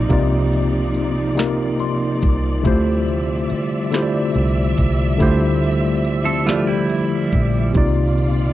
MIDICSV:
0, 0, Header, 1, 7, 480
1, 0, Start_track
1, 0, Key_signature, -1, "minor"
1, 0, Tempo, 851064
1, 54, Time_signature, 6, 3, 24, 8
1, 4811, End_track
2, 0, Start_track
2, 0, Title_t, "Tine electric piano"
2, 0, Program_c, 0, 4
2, 0, Control_c, 0, 64, 127
2, 0, Note_on_c, 0, 48, 70
2, 0, Note_on_c, 0, 58, 71
2, 0, Note_on_c, 0, 63, 74
2, 0, Note_on_c, 0, 65, 69
2, 0, Note_on_c, 0, 74, 82
2, 49, Note_off_c, 0, 48, 0
2, 49, Note_on_c, 0, 48, 79
2, 53, Note_off_c, 0, 58, 0
2, 53, Note_on_c, 0, 58, 73
2, 60, Note_off_c, 0, 63, 0
2, 60, Note_on_c, 0, 63, 75
2, 66, Note_off_c, 0, 65, 0
2, 66, Note_on_c, 0, 65, 73
2, 73, Note_off_c, 0, 74, 0
2, 73, Note_on_c, 0, 74, 88
2, 634, Note_off_c, 0, 48, 0
2, 636, Note_off_c, 0, 58, 0
2, 640, Note_off_c, 0, 63, 0
2, 643, Note_off_c, 0, 65, 0
2, 646, Note_off_c, 0, 74, 0
2, 764, Note_on_c, 0, 48, 71
2, 772, Note_on_c, 0, 58, 70
2, 776, Note_on_c, 0, 63, 66
2, 782, Note_on_c, 0, 65, 67
2, 788, Note_on_c, 0, 70, 78
2, 1017, Note_on_c, 0, 84, 67
2, 1352, Note_off_c, 0, 48, 0
2, 1356, Note_off_c, 0, 58, 0
2, 1358, Note_off_c, 0, 63, 0
2, 1361, Note_off_c, 0, 65, 0
2, 1364, Note_off_c, 0, 70, 0
2, 1473, Note_off_c, 0, 84, 0
2, 1482, Note_on_c, 0, 50, 78
2, 1486, Note_on_c, 0, 57, 79
2, 1491, Note_on_c, 0, 64, 74
2, 1496, Note_on_c, 0, 65, 71
2, 1500, Note_on_c, 0, 67, 69
2, 1502, Control_c, 0, 64, 0
2, 1507, Note_on_c, 0, 72, 89
2, 1601, Control_c, 0, 64, 127
2, 2071, Note_off_c, 0, 50, 0
2, 2073, Note_off_c, 0, 57, 0
2, 2076, Note_off_c, 0, 64, 0
2, 2078, Note_off_c, 0, 65, 0
2, 2080, Note_off_c, 0, 67, 0
2, 2083, Note_off_c, 0, 72, 0
2, 2207, Note_on_c, 0, 50, 71
2, 2214, Note_on_c, 0, 57, 66
2, 2217, Note_on_c, 0, 64, 68
2, 2222, Note_on_c, 0, 65, 67
2, 2228, Note_on_c, 0, 67, 65
2, 2231, Note_on_c, 0, 72, 64
2, 2259, Note_off_c, 0, 72, 0
2, 2269, Note_on_c, 0, 74, 83
2, 2793, Note_off_c, 0, 50, 0
2, 2797, Note_off_c, 0, 57, 0
2, 2798, Note_off_c, 0, 64, 0
2, 2801, Note_off_c, 0, 65, 0
2, 2804, Note_off_c, 0, 67, 0
2, 2824, Note_off_c, 0, 74, 0
2, 2922, Note_on_c, 0, 50, 80
2, 2932, Note_on_c, 0, 57, 77
2, 2934, Note_on_c, 0, 64, 76
2, 2939, Note_on_c, 0, 65, 74
2, 2944, Note_on_c, 0, 67, 77
2, 2947, Note_on_c, 0, 72, 92
2, 3511, Note_off_c, 0, 50, 0
2, 3516, Note_off_c, 0, 57, 0
2, 3517, Note_off_c, 0, 64, 0
2, 3519, Note_off_c, 0, 65, 0
2, 3522, Note_off_c, 0, 67, 0
2, 3523, Note_off_c, 0, 72, 0
2, 3639, Note_on_c, 0, 50, 69
2, 3645, Note_on_c, 0, 57, 69
2, 3647, Note_on_c, 0, 64, 68
2, 3654, Note_on_c, 0, 53, 70
2, 3660, Note_on_c, 0, 67, 64
2, 3665, Note_on_c, 0, 74, 78
2, 4229, Note_off_c, 0, 50, 0
2, 4232, Note_off_c, 0, 57, 0
2, 4233, Note_off_c, 0, 64, 0
2, 4237, Note_off_c, 0, 53, 0
2, 4240, Note_off_c, 0, 67, 0
2, 4242, Note_off_c, 0, 74, 0
2, 4360, Note_on_c, 0, 48, 81
2, 4369, Note_on_c, 0, 58, 72
2, 4375, Note_on_c, 0, 63, 70
2, 4381, Control_c, 0, 64, 0
2, 4381, Note_on_c, 0, 65, 78
2, 4386, Note_on_c, 0, 74, 84
2, 4494, Control_c, 0, 64, 127
2, 4811, Note_off_c, 0, 48, 0
2, 4811, Note_off_c, 0, 58, 0
2, 4811, Note_off_c, 0, 63, 0
2, 4811, Note_off_c, 0, 65, 0
2, 4811, Note_off_c, 0, 74, 0
2, 4811, End_track
3, 0, Start_track
3, 0, Title_t, "Clean electric guitar"
3, 0, Program_c, 1, 27
3, 3527, Note_on_c, 1, 69, 80
3, 3531, Note_on_c, 1, 60, 65
3, 3644, Note_off_c, 1, 69, 0
3, 3646, Note_off_c, 1, 60, 0
3, 3646, Note_on_c, 1, 65, 78
3, 3649, Note_on_c, 1, 57, 72
3, 3763, Note_off_c, 1, 65, 0
3, 3763, Note_on_c, 1, 64, 78
3, 3765, Note_off_c, 1, 57, 0
3, 3769, Note_on_c, 1, 55, 69
3, 4346, Note_off_c, 1, 64, 0
3, 4349, Note_off_c, 1, 55, 0
3, 4811, End_track
4, 0, Start_track
4, 0, Title_t, "String section"
4, 0, Program_c, 2, 48
4, 0, Note_on_c, 2, 48, 67
4, 0, Note_on_c, 2, 53, 68
4, 0, Note_on_c, 2, 58, 68
4, 0, Note_on_c, 2, 63, 77
4, 0, Note_on_c, 2, 74, 68
4, 1474, Note_off_c, 2, 58, 0
4, 1474, Note_off_c, 2, 63, 0
4, 1496, Note_on_c, 2, 55, 71
4, 1500, Note_on_c, 2, 76, 80
4, 4350, Note_off_c, 2, 74, 0
4, 4351, Note_off_c, 2, 48, 0
4, 4351, Note_off_c, 2, 53, 0
4, 4353, Note_off_c, 2, 55, 0
4, 4354, Note_off_c, 2, 76, 0
4, 4368, Note_on_c, 2, 51, 74
4, 4370, Note_on_c, 2, 48, 78
4, 4370, Note_on_c, 2, 74, 65
4, 4371, Note_on_c, 2, 65, 82
4, 4373, Note_on_c, 2, 46, 74
4, 4811, Note_off_c, 2, 46, 0
4, 4811, Note_off_c, 2, 48, 0
4, 4811, Note_off_c, 2, 51, 0
4, 4811, Note_off_c, 2, 65, 0
4, 4811, Note_off_c, 2, 74, 0
4, 4811, End_track
5, 0, Start_track
5, 0, Title_t, "Fingered electric bass"
5, 0, Program_c, 3, 33
5, 60, Note_on_c, 3, 36, 106
5, 1234, Note_off_c, 3, 36, 0
5, 1262, Note_on_c, 3, 36, 89
5, 1475, Note_off_c, 3, 36, 0
5, 1500, Note_on_c, 3, 38, 92
5, 1954, Note_off_c, 3, 38, 0
5, 2457, Note_on_c, 3, 36, 94
5, 2673, Note_off_c, 3, 36, 0
5, 2698, Note_on_c, 3, 36, 87
5, 2913, Note_off_c, 3, 36, 0
5, 2938, Note_on_c, 3, 38, 105
5, 4113, Note_off_c, 3, 38, 0
5, 4137, Note_on_c, 3, 34, 92
5, 4353, Note_off_c, 3, 34, 0
5, 4375, Note_on_c, 3, 36, 96
5, 4811, Note_off_c, 3, 36, 0
5, 4811, End_track
6, 0, Start_track
6, 0, Title_t, "Muted fingered electric bass strokes"
6, 1982, Note_on_c, 9, 29, 43
6, 2038, Note_off_c, 9, 29, 0
6, 4811, End_track
7, 0, Start_track
7, 0, Title_t, "Drums"
7, 56, Note_on_c, 9, 36, 113
7, 56, Note_on_c, 9, 42, 66
7, 112, Note_off_c, 9, 42, 0
7, 113, Note_off_c, 9, 36, 0
7, 300, Note_on_c, 9, 42, 47
7, 357, Note_off_c, 9, 42, 0
7, 532, Note_on_c, 9, 42, 51
7, 589, Note_off_c, 9, 42, 0
7, 775, Note_on_c, 9, 42, 70
7, 785, Note_on_c, 9, 38, 116
7, 831, Note_off_c, 9, 42, 0
7, 841, Note_off_c, 9, 38, 0
7, 1013, Note_on_c, 9, 42, 55
7, 1069, Note_off_c, 9, 42, 0
7, 1252, Note_on_c, 9, 42, 41
7, 1257, Note_on_c, 9, 36, 83
7, 1308, Note_off_c, 9, 42, 0
7, 1313, Note_off_c, 9, 36, 0
7, 1493, Note_on_c, 9, 42, 66
7, 1495, Note_on_c, 9, 36, 108
7, 1550, Note_off_c, 9, 42, 0
7, 1552, Note_off_c, 9, 36, 0
7, 1738, Note_on_c, 9, 42, 46
7, 1795, Note_off_c, 9, 42, 0
7, 1972, Note_on_c, 9, 42, 52
7, 2029, Note_off_c, 9, 42, 0
7, 2213, Note_on_c, 9, 42, 71
7, 2223, Note_on_c, 9, 38, 115
7, 2269, Note_off_c, 9, 42, 0
7, 2279, Note_off_c, 9, 38, 0
7, 2451, Note_on_c, 9, 42, 58
7, 2507, Note_off_c, 9, 42, 0
7, 2693, Note_on_c, 9, 42, 39
7, 2695, Note_on_c, 9, 36, 74
7, 2749, Note_off_c, 9, 42, 0
7, 2751, Note_off_c, 9, 36, 0
7, 2933, Note_on_c, 9, 36, 109
7, 2934, Note_on_c, 9, 42, 64
7, 2990, Note_off_c, 9, 36, 0
7, 2990, Note_off_c, 9, 42, 0
7, 3178, Note_on_c, 9, 42, 48
7, 3235, Note_off_c, 9, 42, 0
7, 3409, Note_on_c, 9, 42, 52
7, 3466, Note_off_c, 9, 42, 0
7, 3649, Note_on_c, 9, 42, 72
7, 3659, Note_on_c, 9, 38, 113
7, 3705, Note_off_c, 9, 42, 0
7, 3715, Note_off_c, 9, 38, 0
7, 3889, Note_on_c, 9, 42, 54
7, 3945, Note_off_c, 9, 42, 0
7, 4128, Note_on_c, 9, 42, 42
7, 4132, Note_on_c, 9, 36, 78
7, 4185, Note_off_c, 9, 42, 0
7, 4188, Note_off_c, 9, 36, 0
7, 4368, Note_on_c, 9, 42, 70
7, 4371, Note_on_c, 9, 36, 120
7, 4424, Note_off_c, 9, 42, 0
7, 4428, Note_off_c, 9, 36, 0
7, 4614, Note_on_c, 9, 42, 50
7, 4670, Note_off_c, 9, 42, 0
7, 4811, End_track
0, 0, End_of_file